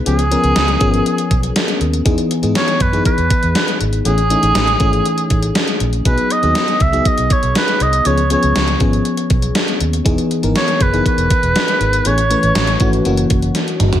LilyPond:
<<
  \new Staff \with { instrumentName = "Oboe" } { \time 4/4 \key cis \dorian \tempo 4 = 120 gis'2. r4 | r4 cis''8 b'8 b'4. r8 | gis'2. r4 | b'8 dis''4 e''8 dis''8 cis''8 b'8 dis''8 |
cis''8 cis''4 r2 r8 | r4 cis''8 b'8 b'2 | cis''2 r2 | }
  \new Staff \with { instrumentName = "FM electric piano" } { \time 4/4 \key cis \dorian <eis b cis' gis'>16 r16 <eis b cis' ais'>8 r8 <eis b cis' gis'>4~ <eis b cis' gis'>16 r4 r16 | <e b dis' gis'>8 r16 <e b dis' gis'>8 r8 <e b dis' gis'>4~ <e b dis' gis'>16 r4 | <e a cis' gis'>16 r16 <e a cis' dis'>8 r8 <e a cis' gis'>4~ <e a cis' gis'>16 r4 r16 | <fis b dis' gis'>8 r16 <fis b dis' gis'>8 r8 <fis b dis' gis'>4~ <fis b dis' gis'>16 r4 |
<eis b cis' gis'>16 r16 <eis b cis' gis'>8 r8 <eis b cis' gis'>4~ <eis b cis' gis'>16 r4 r16 | <e b dis' gis'>8 r16 <e b dis' ais'>8 r8 <e b dis' gis'>4~ <e b dis' gis'>16 r4 | <e a cis' gis'>16 r16 <e a cis' b'>8 r8 <e a cis' fis'>8 <e ais cis' fis'>4. r8 | }
  \new Staff \with { instrumentName = "Fingered electric bass" } { \clef bass \time 4/4 \key cis \dorian cis,8. cis,16 cis,8 gis,,8 r8 b,,8 r8 dis,8 | e,16 r8 gis,16 r8 fis,8 r16 e,16 r16 e,16 r8 gis,,8 | a,,8. a,,16 a,,8 gis,,8 r8 a,,8 r8 ais,,8 | b,,16 r8 dis,16 r8 cis,8 r16 b,,16 r16 b,,16 r8 c,8 |
cis,8. cis,16 cis,8 gis,,8 r8 b,,8 r8 dis,8 | e,,16 r8 gis,,16 r8 fis,,8 r16 e,,16 r16 e,,16 r8 gis,,8 | a,,8. a,,16 a,,8 gis,,8 fis,,8 fis,,8 r8 g,,8 | }
  \new DrumStaff \with { instrumentName = "Drums" } \drummode { \time 4/4 hh16 hh16 hh16 hh16 <hh sn>16 hh16 <hh bd>16 hh16 hh16 hh16 <hh bd>16 hh16 <hh sn>16 hh16 hh16 hh16 | <hh bd>16 hh16 hh16 hh16 <hh sn>16 hh16 <hh bd>16 hh16 <hh bd>16 hh16 <hh bd>16 hh16 <hh sn>16 hh16 hh16 hh16 | hh16 hh16 hh16 hh16 <hh sn>16 hh16 <hh bd>16 hh16 hh16 hh16 <hh bd>16 hh16 <hh sn>16 hh16 hh16 hh16 | <hh bd>16 hh16 hh16 hh16 <hh sn>16 hh16 <hh bd>16 hh16 <hh bd>16 hh16 <hh bd>16 hh16 <hh sn>16 hh16 hh16 hh16 |
hh16 hh16 hh16 hh16 <hh sn>16 hh16 <hh bd>16 hh16 hh16 hh16 <hh bd>16 hh16 <hh sn>16 hh16 hh16 hh16 | <hh bd>16 hh16 hh16 hh16 <hh sn>16 hh16 <hh bd>16 hh16 <hh bd>16 hh16 <hh bd>16 hh16 <hh sn>16 hh16 hh16 hh16 | hh16 hh16 hh16 hh16 <hh sn>16 hh16 <hh bd>16 hh16 hh16 hh16 <hh bd>16 hh16 <hh sn>16 hh16 <hh toml>16 <hh tomfh>16 | }
>>